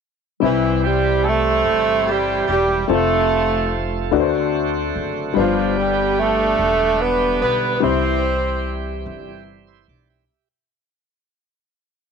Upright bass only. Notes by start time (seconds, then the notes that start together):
0.43 C2
1.65 G1
2.49 E1
2.90 F1
4.12 D2
4.96 F#1
5.37 G1
6.59 E1
7.42 B1
7.83 C2
9.06 G1
9.88 B1